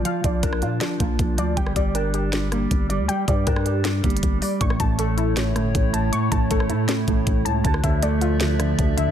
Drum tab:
HH |x-----x-----x-----x-----x-----x-----x-----x-----|x-----x-----x-----x-----x-----x-----x-----x-----|x-----x-----x-----x-----x-----x-x-x-x-----o-----|x-----x-----x-----x-----x-----x-----x-----x-----|
SD |---------------r--------o-----------------------|---r--------------------o-----r-----------------|---------------r--------o-----------------------|---r--------------------o-----r-----------------|
BD |------o-----o-----------------o-----o-----------|o-----o-----------------------------o-----------|------o-----o-----------------o-----o-----------|o-----o-----------------------------o-----------|

HH |x-----x-----x-----x-----x-----x-----x-----x-----|x-----x-----x-----x-----x-----x-----x-----x-----|
SD |---------------r--------o-----------------------|---r--------------------o-----r-----------------|
BD |------o-----o-----------------o-----o-----------|o-----o-----------------------------o-----------|